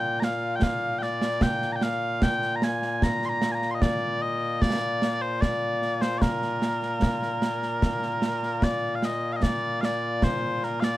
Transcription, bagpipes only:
0.00 10.97 A#2 medium
0.00 10.97 A#3 medium
0.00 10.97 F4 medium
0.00 0.20 G5 loud
0.20 0.24 A#5 medium
0.24 0.56 F5 medium
0.56 0.64 G5 medium
0.64 0.99 F5 loud
0.99 1.42 D5 medium
0.99 1.03 G5 medium
1.42 1.72 G5 loud
1.72 1.83 G5 medium
1.72 1.76 A#5 medium
1.83 2.23 F5 loud
2.23 2.56 G5 loud
2.56 2.64 A#5 medium
2.64 3.03 G#5 medium
3.03 3.26 A#5 loud
3.26 3.52 A#5 loud
3.26 3.29 C6 medium
3.52 3.55 G#5 medium
3.52 3.71 A#5 loud
3.71 3.82 D#5 medium
3.71 3.75 C6 medium
3.82 4.22 D5 loud
4.22 4.61 D#5 loud
4.61 5.22 D5 loud
5.22 5.41 C5 medium
5.41 6.02 D5 medium
6.02 6.18 C5 medium
6.18 8.64 A#4 medium
6.18 6.22 D5 medium
8.64 8.95 D5 medium
8.95 9.05 F5 medium
9.05 9.33 D#5 medium
9.33 9.43 D#5 medium
9.33 9.36 F5 medium
9.43 9.81 D5 medium
9.81 10.24 D5 medium
9.81 9.85 F5 medium
10.24 10.64 C5 medium
10.64 10.80 A#4 medium
10.80 10.97 D5 medium
10.80 10.84 F5 medium

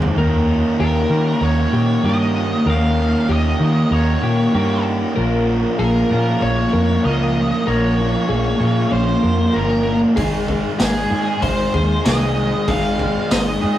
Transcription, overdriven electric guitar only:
0.00 0.15 G#3 medium
0.00 0.15 C4 medium
0.00 0.14 D#4 medium
0.00 0.14 G#4 medium
0.15 1.11 D#3 medium
0.15 1.11 A#3 medium
0.15 1.10 C#4 medium
0.15 1.10 G4 medium
0.15 1.09 A#4 medium
1.10 2.02 D#3 medium
1.10 2.04 A#3 medium
1.10 2.04 C#4 medium
1.10 2.02 G4 medium
1.10 2.05 A#4 medium
2.03 2.64 D#3 medium
2.03 2.65 A#3 medium
2.03 2.67 C#4 medium
2.03 2.65 G4 medium
2.03 2.68 A#4 medium
2.66 3.58 D#3 medium
2.66 3.61 A#3 medium
2.66 3.60 C#4 medium
2.66 3.58 G4 medium
2.66 3.59 A#4 medium
3.59 4.51 D#3 medium
3.59 4.52 A#3 medium
3.59 4.53 C#4 medium
3.59 4.52 G4 medium
3.59 4.54 A#4 medium
4.53 5.14 D#3 medium
4.53 5.15 A#3 medium
4.53 5.16 C#4 medium
4.53 5.15 G4 medium
4.53 5.17 A#4 medium
5.14 6.12 A#2 medium
5.14 6.11 F3 medium
5.14 6.11 A#3 medium
5.14 6.10 C#4 medium
5.14 6.10 F4 medium
5.14 6.10 A#4 loud
6.10 7.02 A#2 medium
6.10 7.02 F3 medium
6.10 7.04 A#3 medium
6.10 7.03 C#4 medium
6.10 7.02 F4 medium
6.10 7.05 A#4 medium
7.03 7.64 A#2 medium
7.03 7.65 F3 medium
7.03 7.66 A#3 medium
7.03 7.65 C#4 medium
7.03 7.65 F4 medium
7.03 7.67 A#4 medium
7.65 8.58 A#2 medium
7.65 8.58 F3 medium
7.65 8.61 A#3 medium
7.65 8.59 C#4 medium
7.65 8.59 F4 medium
7.65 8.59 A#4 medium
8.59 9.52 A#2 medium
8.59 9.53 F3 medium
8.59 9.54 A#3 medium
8.59 9.53 C#4 medium
8.59 9.53 F4 medium
8.59 9.56 A#4 medium
9.53 10.15 A#2 medium
9.53 10.15 F3 medium
9.53 10.17 A#3 medium
9.53 10.16 C#4 medium
9.53 10.16 F4 medium
9.53 10.18 A#4 medium
10.16 11.12 G#2 medium
10.16 11.09 D#3 medium
10.16 11.11 G#3 medium
10.16 11.11 C4 medium
10.16 11.11 D#4 medium
10.16 11.10 G#4 loud
11.10 12.04 G#2 medium
11.10 12.04 D#3 medium
11.10 12.06 G#3 medium
11.10 12.06 C4 medium
11.10 12.07 D#4 medium
11.10 12.07 G#4 medium
12.05 12.66 G#2 medium
12.05 12.66 D#3 medium
12.05 12.68 G#3 medium
12.05 12.68 C4 medium
12.05 12.69 D#4 medium
12.05 12.69 G#4 medium
12.67 13.60 G#2 medium
12.67 13.60 D#3 medium
12.67 13.62 G#3 medium
12.67 13.62 C4 medium
12.67 13.61 D#4 medium
12.67 13.61 G#4 medium
13.61 13.78 G#2 medium
13.61 13.78 D#3 medium
13.61 13.78 G#3 medium
13.61 13.78 C4 medium
13.61 13.78 D#4 medium
13.61 13.78 G#4 medium

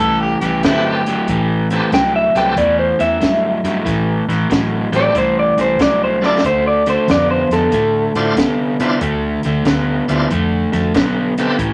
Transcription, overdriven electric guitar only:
0.00 0.36 A2 medium
0.00 0.37 E3 medium
0.42 0.61 A2 medium
0.42 0.61 E3 medium
0.65 1.02 A2 medium
0.65 1.03 F#3 medium
1.07 1.26 A2 medium
1.07 1.27 F#3 medium
1.29 1.67 A2 medium
1.29 1.67 E3 loud
1.71 1.90 A2 medium
1.71 1.90 E3 medium
1.93 2.31 A2 medium
1.93 2.31 F#3 medium
2.36 2.55 A2 medium
2.36 2.55 F#3 medium
2.57 2.95 A2 medium
2.57 2.96 E3 medium
2.99 3.19 A2 medium
2.99 3.19 E3 medium
3.21 3.59 A2 medium
3.21 3.59 F#3 medium
3.65 3.84 A2 medium
3.65 3.84 F#3 medium
3.85 4.24 A2 medium
3.85 4.24 E3 medium
4.29 4.48 A2 medium
4.29 4.48 E3 medium
4.50 4.88 A2 medium
4.50 4.89 F#3 medium
4.92 5.12 A2 medium
4.92 5.12 F#3 medium
5.14 5.53 A2 medium
5.14 5.53 E3 medium
5.58 5.77 A2 medium
5.58 5.77 E3 medium
5.79 6.18 A2 medium
5.79 6.18 F#3 medium
6.22 6.41 A2 medium
6.22 6.42 F#3 medium
6.44 6.82 D3 medium
6.44 6.82 A3 medium
6.87 7.06 D3 medium
6.87 7.06 A3 medium
7.10 7.47 D3 medium
7.10 7.47 B3 medium
7.52 7.71 D3 medium
7.52 7.71 B3 medium
7.73 8.11 D3 medium
7.73 8.12 A3 medium
8.16 8.35 D3 medium
8.16 8.35 A3 medium
8.38 8.76 D3 medium
8.38 8.76 B3 medium
8.80 8.99 D3 medium
8.80 9.00 B3 medium
9.01 9.40 D3 medium
9.01 9.40 A3 medium
9.45 9.64 D3 medium
9.45 9.64 A3 medium
9.65 10.04 D3 medium
9.65 10.04 B3 medium
10.10 10.29 D3 medium
10.10 10.29 B3 medium
10.31 10.69 D3 medium
10.31 10.69 A3 medium
10.72 10.92 D3 medium
10.72 10.92 A3 medium
10.94 11.33 D3 medium
10.94 11.33 B3 medium
11.38 11.57 D3 medium
11.38 11.57 B3 medium
11.58 11.73 A2 medium
11.58 11.73 E3 medium

